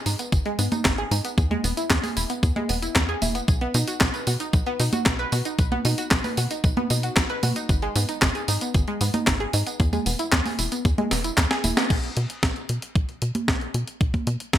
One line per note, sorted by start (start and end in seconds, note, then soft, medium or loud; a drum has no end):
0.06 0.16 G#2 medium
0.06 0.17 D#4 medium
0.06 open hi-hat loud
0.06 tambourine medium
0.19 0.30 B3 medium
0.19 closed hi-hat medium
0.19 tambourine soft
0.32 0.42 G#1 loud
0.32 kick loud
0.32 closed hi-hat medium
0.32 tambourine soft
0.46 0.52 G#3 loud
0.46 closed hi-hat soft
0.59 0.69 G#2 medium
0.59 0.71 B3 medium
0.59 open hi-hat loud
0.59 tambourine medium
0.72 0.84 D#4 medium
0.72 closed hi-hat medium
0.72 tambourine soft
0.72 high conga medium
0.85 1.05 G#1 medium
0.85 kick loud
0.85 snare loud
0.85 clap loud
0.85 closed hi-hat medium
0.85 tambourine soft
0.98 1.09 G#4 loud
0.98 closed hi-hat soft
1.11 1.21 G#2 loud
1.11 1.24 D#4 medium
1.11 open hi-hat loud
1.11 tambourine medium
1.25 1.35 B3 medium
1.25 closed hi-hat medium
1.25 tambourine soft
1.38 1.57 E2 loud
1.38 kick loud
1.38 closed hi-hat medium
1.38 tambourine soft
1.51 1.57 G#3 loud
1.51 closed hi-hat soft
1.51 high conga medium
1.64 1.74 E1 loud
1.64 1.76 B3 medium
1.64 open hi-hat loud
1.64 tambourine medium
1.77 1.90 E4 medium
1.77 closed hi-hat soft
1.77 tambourine soft
1.90 2.00 E2 loud
1.90 kick loud
1.90 snare loud
1.90 clap loud
1.90 closed hi-hat soft
1.90 tambourine soft
2.03 2.10 G#4 medium
2.03 open hi-hat medium
2.03 tambourine soft
2.03 high conga medium
2.17 2.27 E1 medium
2.17 2.28 E4 medium
2.17 open hi-hat loud
2.17 tambourine medium
2.30 2.41 B3 medium
2.30 closed hi-hat medium
2.30 tambourine soft
2.43 2.53 E2 medium
2.43 kick loud
2.43 closed hi-hat medium
2.43 tambourine soft
2.56 2.63 G#3 loud
2.56 closed hi-hat soft
2.56 high conga medium
2.69 2.89 E1 medium
2.69 2.82 B3 medium
2.69 open hi-hat loud
2.69 tambourine medium
2.82 2.95 E4 medium
2.82 closed hi-hat soft
2.82 tambourine soft
2.96 3.15 E2 loud
2.96 kick loud
2.96 snare loud
2.96 clap loud
2.96 closed hi-hat medium
2.96 tambourine soft
3.09 3.20 G#4 loud
3.09 closed hi-hat soft
3.22 3.42 E1 medium
3.22 3.34 E4 medium
3.22 open hi-hat loud
3.22 tambourine medium
3.22 high conga medium
3.35 3.46 B3 medium
3.35 closed hi-hat soft
3.35 tambourine soft
3.48 3.68 B1 loud
3.48 kick loud
3.48 closed hi-hat soft
3.48 tambourine soft
3.61 3.68 B3 loud
3.61 closed hi-hat soft
3.74 3.84 B2 loud
3.74 3.87 D#4 medium
3.74 open hi-hat loud
3.74 tambourine medium
3.88 4.00 F#4 medium
3.88 closed hi-hat medium
3.88 tambourine soft
4.01 4.11 B1 loud
4.01 kick loud
4.01 snare loud
4.01 clap loud
4.01 closed hi-hat soft
4.01 tambourine soft
4.14 4.21 B4 medium
4.14 closed hi-hat soft
4.14 tambourine soft
4.27 4.37 B2 medium
4.27 4.38 F#4 medium
4.27 open hi-hat loud
4.27 tambourine medium
4.40 4.51 D#4 medium
4.40 closed hi-hat soft
4.40 tambourine soft
4.53 4.63 B1 loud
4.53 kick loud
4.53 closed hi-hat medium
4.53 tambourine soft
4.66 4.73 B3 loud
4.66 closed hi-hat soft
4.80 4.90 B2 medium
4.80 4.92 D#4 medium
4.80 open hi-hat loud
4.80 tambourine medium
4.93 5.05 F#4 medium
4.93 closed hi-hat medium
4.93 tambourine soft
4.93 high conga medium
5.06 5.26 B1 medium
5.06 kick loud
5.06 snare loud
5.06 clap loud
5.06 closed hi-hat medium
5.06 tambourine soft
5.19 5.30 B4 loud
5.19 closed hi-hat soft
5.32 5.42 B2 loud
5.32 5.45 F#4 medium
5.32 open hi-hat loud
5.32 tambourine medium
5.45 5.56 D#4 medium
5.45 closed hi-hat soft
5.45 tambourine soft
5.59 5.78 B1 loud
5.59 kick loud
5.59 closed hi-hat medium
5.59 tambourine soft
5.72 5.78 B3 loud
5.72 closed hi-hat soft
5.72 high conga medium
5.85 5.95 B2 loud
5.85 5.98 D#4 medium
5.85 open hi-hat loud
5.85 tambourine medium
5.98 6.11 F#4 medium
5.98 closed hi-hat medium
5.98 tambourine soft
6.11 6.21 B1 loud
6.11 kick loud
6.11 snare loud
6.11 clap medium
6.11 closed hi-hat medium
6.11 tambourine soft
6.24 6.31 B4 medium
6.24 open hi-hat medium
6.24 tambourine soft
6.24 high conga medium
6.37 6.48 B2 medium
6.37 6.49 F#4 medium
6.37 open hi-hat loud
6.37 tambourine medium
6.51 6.62 D#4 medium
6.51 closed hi-hat medium
6.51 tambourine soft
6.64 6.74 B1 loud
6.64 kick loud
6.64 closed hi-hat medium
6.64 tambourine soft
6.77 6.84 B3 loud
6.77 closed hi-hat soft
6.77 high conga medium
6.90 7.10 B2 medium
6.90 7.03 D#4 medium
6.90 open hi-hat loud
6.90 tambourine medium
7.03 7.16 F#4 medium
7.03 closed hi-hat medium
7.03 tambourine soft
7.17 7.26 B1 medium
7.17 kick loud
7.17 snare loud
7.17 clap loud
7.17 closed hi-hat medium
7.17 tambourine soft
7.30 7.41 B4 loud
7.30 closed hi-hat soft
7.43 7.53 B2 medium
7.43 7.55 F#4 medium
7.43 open hi-hat loud
7.43 tambourine medium
7.43 high conga medium
7.56 7.67 D#4 medium
7.56 closed hi-hat medium
7.56 tambourine soft
7.69 7.89 G#1 loud
7.69 kick loud
7.69 closed hi-hat medium
7.69 tambourine soft
7.82 7.89 G#3 loud
7.82 closed hi-hat soft
7.96 8.05 G#2 loud
7.96 8.08 B3 medium
7.96 open hi-hat loud
7.96 tambourine medium
8.09 8.21 D#4 medium
8.09 closed hi-hat medium
8.09 tambourine soft
8.22 8.32 G#1 loud
8.22 kick loud
8.22 snare loud
8.22 clap loud
8.22 closed hi-hat medium
8.22 tambourine soft
8.35 8.42 G#4 medium
8.35 closed hi-hat soft
8.35 tambourine soft
8.48 8.58 G#2 medium
8.48 8.59 D#4 medium
8.48 open hi-hat loud
8.48 tambourine medium
8.61 8.72 B3 medium
8.61 closed hi-hat medium
8.61 tambourine soft
8.74 8.84 G#1 loud
8.74 kick loud
8.74 closed hi-hat medium
8.74 tambourine soft
8.88 8.94 G#3 loud
8.88 closed hi-hat soft
9.01 9.11 G#2 medium
9.01 9.13 B3 medium
9.01 open hi-hat loud
9.01 tambourine medium
9.14 9.27 D#4 medium
9.14 closed hi-hat medium
9.14 tambourine soft
9.14 high conga medium
9.27 9.47 G#1 medium
9.27 kick loud
9.27 snare loud
9.27 clap loud
9.27 closed hi-hat medium
9.27 tambourine soft
9.40 9.51 G#4 loud
9.40 closed hi-hat soft
9.53 9.63 G#2 loud
9.53 9.66 D#4 medium
9.53 open hi-hat loud
9.53 tambourine medium
9.67 9.78 B3 medium
9.67 closed hi-hat medium
9.67 tambourine soft
9.80 10.00 E2 loud
9.80 kick loud
9.80 closed hi-hat medium
9.80 tambourine soft
9.93 9.99 G#3 loud
9.93 closed hi-hat soft
9.93 tambourine soft
9.93 high conga medium
10.06 10.16 E1 loud
10.06 10.19 B3 medium
10.06 open hi-hat loud
10.06 tambourine medium
10.19 10.32 E4 medium
10.19 closed hi-hat medium
10.19 tambourine soft
10.32 10.42 E2 loud
10.32 kick loud
10.32 snare loud
10.32 clap loud
10.32 closed hi-hat medium
10.32 tambourine soft
10.46 10.52 G#4 medium
10.46 open hi-hat medium
10.46 tambourine soft
10.46 high conga medium
10.59 10.69 E1 medium
10.59 10.70 E4 medium
10.59 open hi-hat loud
10.59 tambourine medium
10.72 10.83 B3 medium
10.72 closed hi-hat medium
10.72 tambourine soft
10.85 10.95 E2 loud
10.85 kick loud
10.85 closed hi-hat medium
10.85 tambourine soft
10.98 11.05 G#3 loud
10.98 closed hi-hat soft
10.98 high conga medium
11.11 11.31 E1 medium
11.11 11.24 B3 medium
11.11 snare medium
11.11 open hi-hat loud
11.11 tambourine medium
11.24 11.37 E4 medium
11.24 closed hi-hat medium
11.24 tambourine soft
11.38 11.48 E2 medium
11.38 kick loud
11.38 snare medium
11.38 clap loud
11.38 closed hi-hat medium
11.38 tambourine soft
11.51 11.62 G#4 loud
11.51 snare medium
11.51 closed hi-hat soft
11.51 tambourine soft
11.64 11.74 E1 medium
11.64 11.77 E4 medium
11.64 open hi-hat loud
11.64 tambourine medium
11.64 high conga medium
11.77 11.88 B3 medium
11.77 snare medium
11.77 closed hi-hat medium
11.77 tambourine soft
11.90 12.10 B1 loud
11.90 kick loud
11.90 closed hi-hat medium
11.90 crash medium
12.04 closed hi-hat soft
12.17 12.27 B2 loud
12.17 closed hi-hat medium
12.30 closed hi-hat medium
12.43 12.53 B1 loud
12.43 kick loud
12.43 snare loud
12.43 closed hi-hat medium
12.56 closed hi-hat soft
12.69 12.79 B2 medium
12.69 closed hi-hat loud
12.82 closed hi-hat medium
12.95 13.05 B1 loud
12.95 kick loud
12.95 closed hi-hat medium
13.09 closed hi-hat soft
13.22 13.32 B2 medium
13.22 closed hi-hat medium
13.35 closed hi-hat medium
13.35 high conga medium
13.48 13.68 B1 medium
13.48 kick loud
13.48 snare loud
13.48 closed hi-hat medium
13.61 closed hi-hat soft
13.74 13.84 B2 medium
13.74 closed hi-hat loud
13.88 closed hi-hat soft
14.01 14.21 B1 medium
14.01 kick loud
14.01 closed hi-hat soft
14.14 kick medium
14.14 closed hi-hat soft
14.14 high conga medium
14.27 14.37 B2 loud
14.27 closed hi-hat medium
14.40 closed hi-hat medium
14.53 14.58 B1 loud
14.53 kick loud
14.53 snare loud
14.53 closed hi-hat medium